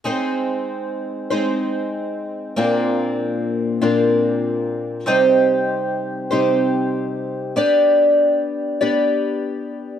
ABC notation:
X:1
M:6/8
L:1/8
Q:3/8=48
K:Ablyd
V:1 name="Twelve-string acoustic guitar"
[A,CEc]3 [A,CEc]3 | [B,,B,CDF]3 [B,,B,CDF]3 | [C,G,CEGc]3 [C,G,CEGc]3 | [=B,DGd]3 [B,DGd]3 |]